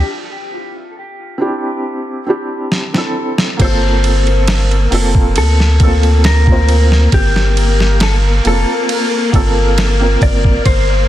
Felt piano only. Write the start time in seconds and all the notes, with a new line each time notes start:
1.38 C4 D4 E4 G4
2.26 C4 D4 E4 G4
2.94 C4 D4 E4
2.98 A4
3.57 A#3 C4
3.62 F4 A4
4.91 A#3 C4 F4 A4
5.80 A#3 C4 F4 A4
6.44 A#3 C4
6.49 F4 C5
8.44 A#3 C4 F4
8.48 A4
9.31 A#3 C4 F4 A4
9.99 A#3 C4 F4 A#4